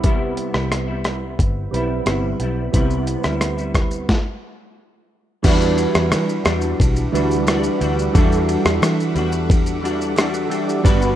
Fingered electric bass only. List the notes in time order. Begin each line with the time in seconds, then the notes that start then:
Already playing: C2
0.54 C2
1.39 G1
1.72 B1
2.06 G1
2.40 B1
2.74 C2
3.25 D2
5.44 E2
5.95 E2
6.12 E3
6.46 E2
6.80 B1
7.13 D2
7.81 D2
8.15 E2
8.65 E2
8.82 E3
9.15 E2
10.85 G1